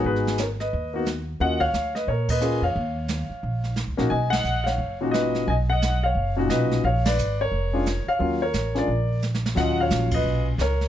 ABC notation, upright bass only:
X:1
M:4/4
L:1/8
Q:"Swing" 1/4=176
K:Ebm
V:1 name="Upright bass" clef=bass
A,,,4 E,,4 | E,,2 =D,,2 B,,3 F,, | E,,3 z B,,,2- (3B,,, D,, B,,, | =B,,,2 ^A,,,2 ^F,,,4 |
=B,,,4 ^F,,,2 B,,,2 | B,,,2 A,,,2 F,,,3 z | E,,2 =A,,,2 B,,,4 | E,,2 B,,,2 C,,2 D,,2 |]